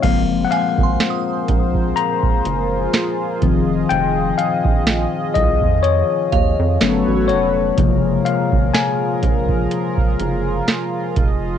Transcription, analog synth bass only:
0.04 F#1
0.78 G#1
1.49 A#1
2.23 F#1
2.46 F#1
3.42 F1
3.91 F1
4.65 A#1
5.36 C2
5.62 F2
6.33 D#2
6.59 F2
6.81 G1
7.08 A1
7.30 F1
7.78 F#1
8.52 G#1
9.23 A#1
9.98 F#1
10.20 F#1
11.17 F1

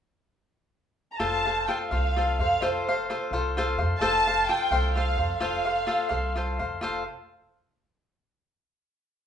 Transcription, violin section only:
1.12 A#5
1.18 A5
1.68 G5
1.90 F5
2.40 F5
2.62 C5
4.00 A5
4.47 G5
4.94 F5
5.38 F5

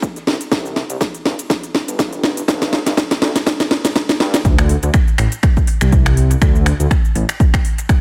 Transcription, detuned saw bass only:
0.27 C2
0.51 C2
0.90 C2
1.25 G1
1.88 G1
2.48 G1
2.86 G1
3.22 D2
4.20 G2
4.45 D2
4.83 D2
5.18 A1
5.81 C2
6.41 D2
6.80 D2
7.15 A1

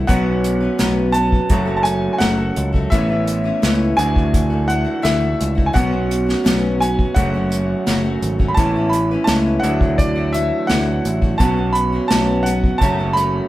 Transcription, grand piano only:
0.07 F#5
1.12 A5
1.77 A5
1.83 G#5
2.13 G#5
2.18 F#5
2.90 E5
3.97 G#5
4.68 F#5
5.03 E5
5.66 G#5
5.74 F#5
6.80 G#5
7.14 F#5
8.48 B5
8.54 A5
8.90 B5
9.24 A5
9.60 F#5
9.98 D5
10.33 E5
10.67 F#5
11.38 A5
11.73 B5
12.08 A5
12.43 F#5
12.78 A5
13.13 B5

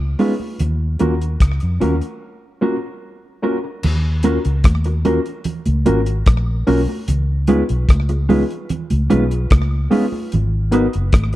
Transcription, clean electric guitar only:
0.19 G#3 C#4 F4 B4
0.40 muted clean electric guitar stroke
1.00 A#3 C#4 F#4 A#4
1.81 A#3 C#4 F#4 A#4
2.62 A#3 C#4 F#4 A#4
3.43 A#3 C#4 F#4 A#4
3.64 muted clean electric guitar stroke
4.24 A#3 C#4 F#4 A#4
4.86 muted clean electric guitar stroke
5.05 A#3 C#4 F#4 A#4
5.86 A#3 C#4 F#4 A#4
6.67 A#3 C#4 F#4 A#4
6.88 muted clean electric guitar stroke
7.48 G#3 C#4 F4 B4
8.09 muted clean electric guitar stroke
8.29 G#3 C#4 F4 B4
9.10 G#3 C#4 F4 B4
9.91 G#3 C#4 F4 B4
10.12 muted clean electric guitar stroke
10.73 B3 D#4 F#4 B4

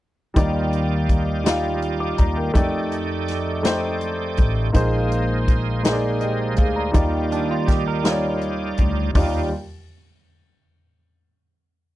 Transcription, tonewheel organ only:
0.37 G3 D#4 F4 D5
2.55 A3 D#4 G4 D5
4.75 G#3 A#3 D#4 C5
6.94 G3 D#4 F4 D5
9.15 G3 D#4 F4 D5

